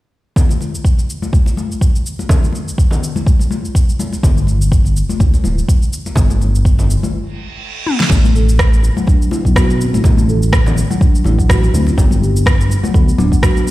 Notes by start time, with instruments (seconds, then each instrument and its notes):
0.36 kick, low conga, shaker
0.49 high conga, shaker
0.61 muted conga, shaker
0.75 shaker
0.84 kick, shaker
0.98 muted conga, shaker
1.10 shaker
1.22 high conga, shaker
1.33 kick, high conga, shaker
1.46 muted conga, shaker
1.57 high conga, shaker
1.72 shaker
1.81 kick, muted conga, shaker
1.96 shaker
2.06 shaker
2.19 muted conga, shaker
2.29 kick, low conga, shaker
2.43 high conga, shaker
2.52 muted conga, shaker
2.68 shaker
2.78 kick, shaker
2.91 muted conga, low conga, shaker
3.03 shaker
3.16 high conga, shaker
3.27 kick, shaker
3.39 muted conga, shaker
3.51 high conga, shaker
3.65 shaker
3.75 kick, muted conga, shaker
3.89 shaker
3.99 high conga, shaker
4.13 muted conga, shaker
4.23 analog synth bass G1, kick, low conga, shaker
4.37 high conga, shaker
4.47 muted conga, shaker
4.62 shaker
4.72 kick, shaker
4.85 muted conga, shaker
4.97 shaker
5.09 high conga, shaker
5.19 analog synth bass D2, kick, high conga, shaker
5.34 muted conga, shaker
5.44 analog synth bass D1, high conga, shaker
5.58 shaker
5.68 kick, muted conga, shaker
5.82 shaker
5.93 shaker
6.06 muted conga, shaker
6.16 analog synth bass G1, kick, low conga, shaker
6.30 high conga, shaker
6.41 muted conga, shaker
6.55 shaker
6.65 kick, shaker
6.79 muted conga, low conga, shaker
6.90 shaker
7.03 high conga, shaker
7.14 reverse cymbal
7.87 high tom
8.00 snare
8.10 analog synth bass A1, marimba A3, kick, crash, low conga, shaker
8.24 marimba A3, muted conga, high conga, shaker
8.35 marimba A4, shaker
8.49 shaker
8.59 kick, cross-stick, muted conga, shaker
8.73 shaker
8.82 muted conga, shaker
8.97 marimba F#3, high conga, shaker
9.07 marimba D4, kick, muted conga, high conga, shaker
9.22 shaker
9.31 marimba E4, muted conga, high conga, shaker
9.45 analog synth bass B1, marimba F#3, kick, shaker
9.56 marimba F#4, kick, cross-stick, shaker
9.69 muted conga, shaker
9.80 marimba C4, shaker
9.93 analog synth bass A1, marimba E4, muted conga, shaker
10.04 analog synth bass A1, marimba A3, kick, low conga, shaker
10.17 marimba A3, muted conga, high conga, shaker
10.29 marimba A4, shaker
10.43 shaker
10.52 kick, cross-stick, muted conga, shaker
10.66 low conga, shaker
10.76 muted conga, shaker
10.90 marimba F#3, high conga, shaker
11.01 marimba D4, kick, muted conga, shaker
11.15 shaker
11.24 analog synth bass A1, marimba E4, muted conga, high conga, shaker
11.39 marimba F#3, kick, shaker
11.49 marimba F#4, kick, cross-stick, shaker
11.63 muted conga, shaker
11.73 analog synth bass D2, marimba C4, high conga, shaker
11.87 marimba E4, muted conga, shaker
11.98 analog synth bass G1, marimba G3, kick, low conga, shaker
12.10 marimba G3, muted conga, high conga, shaker
12.22 marimba G4, shaker
12.36 shaker
12.46 kick, cross-stick, muted conga, shaker
12.61 shaker
12.70 muted conga, shaker
12.83 marimba F#3, high conga, shaker
12.94 analog synth bass D2, marimba B3, kick, muted conga, high conga, shaker
13.09 shaker
13.18 analog synth bass D1, marimba D4, muted conga, high conga, shaker
13.32 marimba F#3, kick, shaker
13.43 marimba F#4, kick, cross-stick, shaker
13.56 muted conga, shaker
13.66 marimba B3, shaker